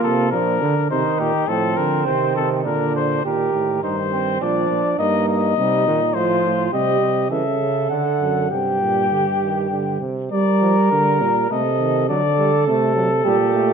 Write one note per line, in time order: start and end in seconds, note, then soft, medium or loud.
0.00 0.34 C3 medium
0.00 0.31 A#3 medium
0.00 0.31 F4 medium
0.00 0.31 A4 medium
0.31 0.63 A#2 medium
0.31 0.60 F3 medium
0.31 0.89 D4 medium
0.31 0.88 A#4 medium
0.62 0.90 D3 medium
0.62 0.75 D3 medium
0.90 1.04 C3 medium
0.90 1.47 D#3 medium
0.90 1.47 D#4 medium
0.90 1.21 C5 medium
1.19 1.32 A#2 medium
1.19 1.50 G4 medium
1.48 1.77 A2 medium
1.48 2.05 F3 medium
1.48 2.63 C4 medium
1.48 1.78 A4 medium
1.77 2.08 D3 medium
1.77 2.06 A#4 medium
2.06 2.36 C3 medium
2.06 2.67 D#3 medium
2.06 2.35 C5 medium
2.36 2.65 C3 medium
2.36 2.49 A4 medium
2.65 3.24 A#2 medium
2.65 3.25 D3 medium
2.65 3.23 D4 medium
2.65 2.95 A#4 medium
2.96 3.25 C5 medium
3.24 3.52 A#2 medium
3.24 3.80 D#3 medium
3.24 3.80 G4 medium
3.24 3.80 A#4 medium
3.53 3.82 A2 soft
3.83 4.40 G2 medium
3.83 4.40 D#3 medium
3.83 3.96 D#4 medium
3.83 4.40 C5 medium
4.12 4.44 C4 medium
4.41 4.69 A#2 medium
4.41 4.98 F3 medium
4.41 5.01 D4 medium
4.41 4.98 D5 medium
4.70 4.83 A#2 medium
4.99 5.57 G2 medium
4.99 5.56 A#3 medium
4.99 5.56 D#4 medium
4.99 5.28 D#5 medium
5.29 6.16 D#5 medium
5.57 5.88 C3 medium
5.57 5.86 G3 medium
5.57 6.14 D#4 medium
5.86 6.17 A#2 medium
5.86 6.00 D#3 medium
6.14 6.44 A2 medium
6.14 6.71 F3 medium
6.14 6.72 F4 medium
6.14 6.72 C5 medium
6.45 6.71 A2 medium
6.72 7.00 C3 medium
6.72 7.29 G3 medium
6.72 7.33 G4 medium
6.72 7.30 D#5 medium
7.01 7.32 C3 medium
7.30 7.90 C#3 medium
7.30 7.43 E3 medium
7.30 8.49 A4 medium
7.30 7.89 E5 medium
7.60 7.89 C#3 medium
7.90 8.49 D3 medium
7.90 8.04 D3 medium
7.90 8.49 F#5 medium
8.21 8.50 F#2 medium
8.50 10.00 G2 medium
8.50 8.83 C3 soft
8.50 9.99 G4 medium
8.50 9.99 G5 medium
8.81 9.11 A#2 medium
9.11 9.25 D3 medium
9.41 9.69 D#3 soft
9.70 10.00 D3 medium
10.01 10.31 C3 medium
10.32 10.59 G3 medium
10.32 10.87 G3 medium
10.32 11.46 A#4 medium
10.32 10.87 D5 medium
10.61 10.75 F3 medium
10.91 11.23 D3 medium
10.91 11.49 G3 medium
10.91 11.52 A#4 medium
11.22 11.50 A#2 medium
11.50 12.10 C3 medium
11.50 11.63 A3 medium
11.50 12.07 A4 medium
11.50 12.09 D#5 medium
11.80 12.08 D#3 medium
12.08 12.69 D3 medium
12.08 12.21 F#3 medium
12.08 13.26 A4 medium
12.08 12.66 D5 medium
12.38 12.51 G3 medium
12.67 13.25 C3 medium
12.67 12.95 A3 medium
12.67 13.73 A4 medium
12.96 13.09 F#3 medium
13.24 13.73 A#2 medium
13.24 13.37 G3 medium
13.24 13.73 G4 medium
13.53 13.73 A3 medium